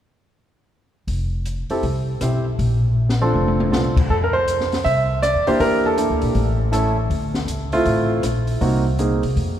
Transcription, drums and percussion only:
1.08 kick, open hi-hat
1.46 closed hi-hat
1.70 open hi-hat
1.83 kick, open hi-hat
2.21 cross-stick, closed hi-hat
2.59 kick, open hi-hat
3.09 snare
3.22 mid tom
3.35 high tom
3.48 high tom
3.60 high tom
3.73 snare
3.96 kick, crash
4.10 kick
4.48 closed hi-hat
4.60 snare
4.72 snare, open hi-hat
4.85 kick, open hi-hat
5.23 cross-stick, closed hi-hat
5.47 open hi-hat
5.60 kick, open hi-hat
5.98 closed hi-hat
6.22 open hi-hat
6.35 kick, open hi-hat
6.73 cross-stick, closed hi-hat
7.10 kick, open hi-hat
7.34 snare
7.48 closed hi-hat
7.72 open hi-hat
7.86 kick, open hi-hat
8.23 cross-stick, closed hi-hat
8.47 open hi-hat
8.61 kick, open hi-hat
8.99 closed hi-hat
9.23 open hi-hat
9.37 kick, open hi-hat

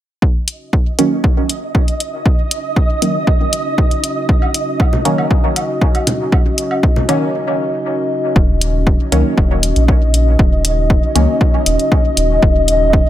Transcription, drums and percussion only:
0.22 kick
0.48 closed hi-hat
0.73 kick
0.99 closed hi-hat
1.24 kick
1.49 closed hi-hat
1.75 kick
1.88 closed hi-hat
2.00 closed hi-hat
2.26 kick
2.51 closed hi-hat
2.76 kick
3.02 closed hi-hat
3.27 kick
3.53 closed hi-hat
3.78 kick
3.91 closed hi-hat
4.04 closed hi-hat
4.29 kick
4.42 low woodblock
4.54 closed hi-hat
4.80 kick, low woodblock
4.93 low conga
5.05 closed hi-hat
5.18 low woodblock
5.31 kick
5.56 closed hi-hat, low woodblock
5.81 kick
5.95 closed hi-hat, low woodblock
6.07 closed hi-hat, low conga
6.32 kick, low woodblock
6.58 closed hi-hat
6.71 low woodblock
6.83 kick
6.96 low conga
7.09 closed hi-hat, low woodblock
8.36 kick
8.61 closed hi-hat
8.87 kick
9.12 closed hi-hat
9.38 kick
9.63 closed hi-hat
9.76 closed hi-hat
9.88 kick
10.14 closed hi-hat
10.39 kick
10.65 closed hi-hat
10.90 kick
11.16 closed hi-hat
11.41 kick
11.66 closed hi-hat
11.79 closed hi-hat
11.92 kick
12.17 closed hi-hat
12.43 kick
12.68 closed hi-hat
12.93 kick

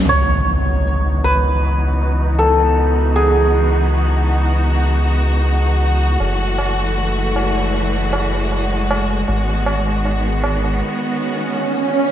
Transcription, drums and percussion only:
6.20 tabla na
6.42 tabla na
6.58 tabla na
6.79 tabla na
6.98 tabla na
7.36 tabla na
7.57 tabla na
7.74 tabla na
7.96 tabla na
8.13 tabla na
8.35 tabla na
8.52 tabla na
8.73 tabla na
8.91 tabla na
9.11 tabla na
9.28 tabla na
9.49 tabla na
9.66 tabla na
9.87 tabla na
10.05 tabla na
10.44 tabla na
10.64 tabla na

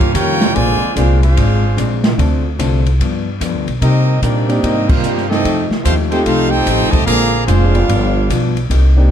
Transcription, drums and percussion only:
0.00 kick, ride
0.15 kick, hi-hat pedal, ride
0.41 snare, ride
0.55 kick, ride
0.96 kick, hi-hat pedal, ride
1.23 ride
1.37 kick, ride
1.78 kick, hi-hat pedal, ride
2.04 snare, ride
2.18 kick, ride
2.59 kick, hi-hat pedal, ride
2.86 ride
3.00 kick, ride
3.41 kick, hi-hat pedal, ride
3.68 ride
3.82 kick, ride
4.22 kick, hi-hat pedal, ride
4.49 ride
4.63 kick, ride
4.89 kick, crash
5.03 hi-hat pedal
5.17 snare
5.31 snare
5.45 kick, ride
5.71 snare
5.85 kick, hi-hat pedal, ride
6.12 ride
6.26 kick, ride
6.66 kick, hi-hat pedal, ride
6.93 kick, ride
7.07 kick, ride
7.48 kick, hi-hat pedal, ride
7.75 ride
7.89 kick, ride
8.30 kick, hi-hat pedal, ride
8.57 ride
8.70 kick, ride

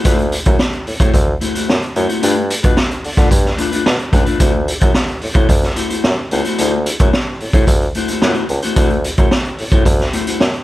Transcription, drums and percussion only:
0.05 kick, closed hi-hat
0.18 closed hi-hat
0.32 closed hi-hat
0.45 kick, closed hi-hat
0.59 snare
0.73 closed hi-hat
0.87 open hi-hat
1.00 kick, closed hi-hat
1.14 kick, closed hi-hat
1.41 closed hi-hat
1.55 closed hi-hat
1.70 snare
1.82 closed hi-hat
1.96 closed hi-hat
2.09 closed hi-hat
2.23 closed hi-hat
2.50 closed hi-hat
2.63 kick, closed hi-hat
2.77 snare
2.91 closed hi-hat
3.04 open hi-hat
3.17 kick, snare, closed hi-hat
3.31 kick, closed hi-hat
3.45 snare
3.58 closed hi-hat
3.72 closed hi-hat
3.86 snare
3.99 closed hi-hat
4.13 kick, closed hi-hat
4.26 closed hi-hat
4.40 kick, closed hi-hat
4.68 closed hi-hat
4.81 kick, closed hi-hat
4.94 snare
5.08 closed hi-hat
5.21 open hi-hat
5.35 kick, closed hi-hat
5.49 kick, closed hi-hat
5.62 snare, closed hi-hat
5.76 closed hi-hat
5.90 closed hi-hat
6.04 snare
6.31 closed hi-hat
6.45 closed hi-hat
6.58 closed hi-hat
6.86 closed hi-hat
6.99 kick, closed hi-hat
7.13 snare
7.40 open hi-hat
7.53 kick, closed hi-hat
7.67 kick, closed hi-hat
7.81 closed hi-hat
7.95 closed hi-hat
8.08 closed hi-hat
8.22 snare
8.34 closed hi-hat
8.49 closed hi-hat
8.62 closed hi-hat
8.76 kick, closed hi-hat
8.90 closed hi-hat
9.04 closed hi-hat
9.17 kick, closed hi-hat
9.31 snare
9.45 closed hi-hat
9.58 open hi-hat
9.72 kick, closed hi-hat
9.85 kick, closed hi-hat
9.99 snare, closed hi-hat
10.13 closed hi-hat
10.27 closed hi-hat
10.40 snare
10.53 closed hi-hat

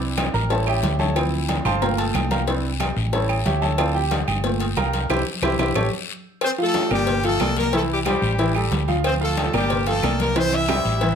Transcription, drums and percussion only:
0.01 high conga
0.17 cowbell, high conga, low timbale, low agogo, short guiro, claves
0.34 high conga, short guiro
0.50 cowbell, high conga, low agogo, long guiro
0.66 high conga, low agogo, claves
0.83 cowbell, high conga, low timbale, short guiro
0.99 high conga, low agogo, short guiro
1.16 cowbell, high conga, low agogo, long guiro, claves
1.32 high conga
1.48 cowbell, high conga, low timbale, low agogo, short guiro
1.65 high conga, low conga, low agogo, short guiro, claves
1.81 cowbell, high conga, low conga, long guiro
1.98 cowbell, high conga, low agogo
2.14 cowbell, high conga, low timbale, low agogo, short guiro, claves
2.31 cowbell, high conga, short guiro
2.47 cowbell, high conga, low agogo, long guiro
2.64 high conga
2.80 cowbell, high conga, low timbale, low agogo, short guiro, claves
2.97 high conga, short guiro
3.13 cowbell, low agogo, long guiro
3.29 low agogo, claves
3.45 cowbell, high conga, low timbale, short guiro
3.62 high conga, low agogo, short guiro
3.78 cowbell, high conga, low agogo, long guiro, claves
3.95 high conga
4.11 cowbell, high conga, low timbale, low agogo, short guiro
4.28 high conga, low conga, low agogo, short guiro, claves
4.44 cowbell, high conga, long guiro
4.60 cowbell, high conga, low agogo
4.77 cowbell, high conga, low timbale, low agogo, short guiro, claves
4.93 cowbell, high conga, short guiro
5.10 cowbell, high conga, high timbale, long guiro, claves
5.43 cowbell, high conga, high timbale, long guiro, claves
5.59 cowbell, high conga, high timbale, long guiro, claves
5.75 cowbell, high conga, high timbale, long guiro, claves
6.41 cowbell, high conga, low agogo, long guiro, claves
6.58 high conga
6.74 cowbell, high conga, low timbale, low agogo, short guiro
6.91 high conga, low conga, low agogo, short guiro, claves
7.07 cowbell, high conga, low conga, long guiro
7.24 cowbell, high conga, low agogo
7.40 cowbell, high conga, low timbale, low agogo, short guiro, claves
7.56 cowbell, high conga, short guiro
7.73 cowbell, high conga, low agogo, long guiro
7.90 high conga
8.05 cowbell, high conga, low timbale, low agogo, short guiro, claves
8.22 high conga, short guiro
8.38 cowbell, high conga, low agogo, long guiro
8.55 low agogo, claves
8.72 cowbell, high conga, low timbale, short guiro
8.88 high conga, low agogo, short guiro
9.04 cowbell, high conga, low agogo, long guiro, claves
9.21 high conga
9.37 cowbell, high conga, low timbale, low agogo, short guiro
9.53 high conga, low conga, low agogo, short guiro, claves
9.70 cowbell, high conga, low conga, long guiro
9.86 cowbell, high conga, low agogo
10.03 cowbell, high conga, low timbale, low agogo, short guiro, claves
10.19 cowbell, high conga, short guiro
10.36 cowbell, high conga, high timbale, low agogo, long guiro
10.52 high conga, high timbale
10.68 cowbell, high conga, high timbale, low agogo, short guiro, claves
10.85 high conga, short guiro
11.01 cowbell, low timbale, low agogo, long guiro

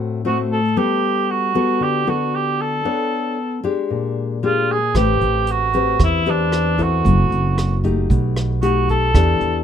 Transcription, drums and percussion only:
4.95 kick, cross-stick, closed hi-hat
5.21 closed hi-hat
5.47 closed hi-hat
5.73 kick, closed hi-hat
6.00 kick, cross-stick, closed hi-hat
6.26 closed hi-hat
6.52 cross-stick, closed hi-hat
6.79 kick, closed hi-hat
7.05 kick, closed hi-hat
7.32 closed hi-hat
7.58 cross-stick, closed hi-hat
7.84 kick, closed hi-hat
8.10 kick, closed hi-hat
8.36 cross-stick, closed hi-hat
8.63 closed hi-hat
8.88 kick, closed hi-hat
9.14 kick, cross-stick, closed hi-hat
9.41 closed hi-hat

